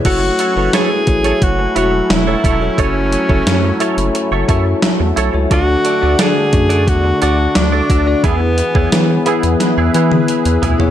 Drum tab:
CC |x---------------|----------------|----------------|----------------|
HH |x-x-x-xxx-x-x-x-|x-x-x-xxx-x-x-x-|x-x-x-xxx-x-x-x-|x-x-x-xxx-x-xxx-|
SD |----o-------o---|----o-------o---|----o-------o---|----o---o-------|
T1 |----------------|----------------|----------------|-----------o----|
FT |----------------|----------------|----------------|--------------oo|
BD |o-----o-o-----o-|o--o------o-----|o-----o-o-----o-|o--o------------|